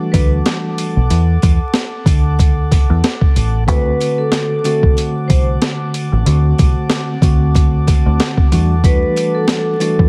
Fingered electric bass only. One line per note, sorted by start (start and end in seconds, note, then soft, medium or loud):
0.14 0.39 D2 loud
0.96 1.07 B1 medium
1.10 1.36 E2 loud
1.43 1.58 E2 medium
2.06 2.85 D2 loud
2.90 3.01 E2 loud
3.36 3.68 A1 medium
3.68 3.94 D2 loud
4.83 4.94 C2 medium
5.30 5.55 C2 medium
6.12 6.23 A1 medium
6.26 6.52 D2 loud
6.59 6.74 C2 medium
7.22 8.01 D2 medium
8.06 8.17 D2 medium
8.52 9.04 E2 medium
9.99 10.09 E2 loud